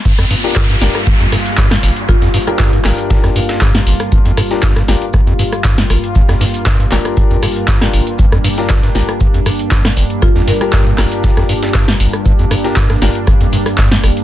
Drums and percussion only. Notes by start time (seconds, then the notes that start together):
0.05 kick, closed hi-hat, crash, shaker
0.19 cross-stick, closed hi-hat
0.31 open hi-hat, shaker
0.44 snare, closed hi-hat
0.56 kick, cross-stick, snare, clap, closed hi-hat, shaker
0.69 snare, closed hi-hat
0.82 snare, open hi-hat, shaker
0.95 cross-stick, closed hi-hat
1.07 kick, closed hi-hat, shaker
1.20 closed hi-hat
1.32 cross-stick, open hi-hat, shaker
1.46 closed hi-hat
1.57 kick, snare, clap, closed hi-hat, shaker
1.71 cross-stick, snare, closed hi-hat
1.83 open hi-hat, shaker
1.97 closed hi-hat
2.09 kick, cross-stick, closed hi-hat, shaker
2.22 snare, closed hi-hat
2.34 snare, open hi-hat, shaker
2.47 cross-stick, closed hi-hat
2.59 kick, snare, clap, closed hi-hat, shaker
2.73 closed hi-hat
2.85 cross-stick, snare, clap, open hi-hat, shaker
2.98 closed hi-hat
3.10 kick, snare, closed hi-hat, shaker
3.24 cross-stick, snare, closed hi-hat
3.36 open hi-hat, shaker
3.49 snare, closed hi-hat, shaker
3.61 kick, cross-stick, clap, closed hi-hat
3.75 snare, closed hi-hat, shaker
3.87 open hi-hat, shaker
4.00 cross-stick, closed hi-hat
4.12 kick, closed hi-hat, shaker
4.25 closed hi-hat
4.37 cross-stick, open hi-hat, shaker
4.51 snare, closed hi-hat
4.63 kick, snare, clap, closed hi-hat, shaker
4.76 cross-stick, snare, closed hi-hat
4.88 snare, open hi-hat, shaker
5.02 closed hi-hat
5.14 kick, cross-stick, closed hi-hat, shaker
5.27 closed hi-hat
5.39 open hi-hat, shaker
5.52 cross-stick, closed hi-hat
5.64 kick, snare, clap, closed hi-hat, shaker
5.78 snare, closed hi-hat
5.90 cross-stick, open hi-hat, shaker
6.03 closed hi-hat
6.15 kick, closed hi-hat, shaker
6.29 cross-stick, snare, closed hi-hat
6.41 snare, open hi-hat, shaker
6.54 closed hi-hat
6.66 kick, cross-stick, snare, clap, closed hi-hat, shaker
6.80 closed hi-hat
6.92 snare, clap, open hi-hat, shaker
7.05 cross-stick, closed hi-hat
7.17 kick, closed hi-hat, shaker
7.31 closed hi-hat
7.43 cross-stick, open hi-hat, shaker
7.56 closed hi-hat
7.68 kick, snare, clap, closed hi-hat, shaker
7.81 cross-stick, snare, closed hi-hat
7.93 open hi-hat, shaker
8.07 closed hi-hat
8.19 kick, closed hi-hat, shaker
8.32 cross-stick, closed hi-hat
8.44 open hi-hat, shaker
8.58 snare, closed hi-hat
8.70 kick, cross-stick, snare, clap, closed hi-hat, shaker
8.83 snare, closed hi-hat
8.95 snare, open hi-hat, shaker
9.09 cross-stick, closed hi-hat
9.21 kick, closed hi-hat, shaker
9.34 closed hi-hat
9.46 cross-stick, open hi-hat, shaker
9.59 closed hi-hat
9.71 kick, snare, clap, closed hi-hat, shaker
9.85 cross-stick, snare, closed hi-hat
9.97 open hi-hat, shaker
10.10 closed hi-hat
10.22 kick, cross-stick, closed hi-hat, shaker
10.36 snare, closed hi-hat
10.48 snare, open hi-hat, shaker
10.61 cross-stick, closed hi-hat
10.73 kick, snare, clap, closed hi-hat, shaker
10.86 closed hi-hat
10.98 cross-stick, snare, clap, open hi-hat, shaker
11.12 closed hi-hat
11.24 kick, snare, closed hi-hat, shaker
11.37 cross-stick, snare, closed hi-hat
11.49 open hi-hat, shaker
11.63 snare, closed hi-hat, shaker
11.74 kick, cross-stick, clap, closed hi-hat
11.88 snare, closed hi-hat, shaker
12.00 open hi-hat, shaker
12.13 cross-stick, closed hi-hat
12.26 kick, closed hi-hat, shaker
12.39 closed hi-hat
12.51 cross-stick, open hi-hat, shaker
12.64 snare, closed hi-hat
12.76 kick, snare, clap, closed hi-hat, shaker
12.90 cross-stick, snare, closed hi-hat
13.02 snare, open hi-hat, shaker
13.15 closed hi-hat
13.27 kick, cross-stick, closed hi-hat, shaker
13.41 closed hi-hat
13.53 open hi-hat, shaker
13.66 cross-stick, closed hi-hat
13.78 kick, snare, clap, closed hi-hat, shaker
13.91 snare, closed hi-hat
14.04 cross-stick, open hi-hat, shaker
14.17 closed hi-hat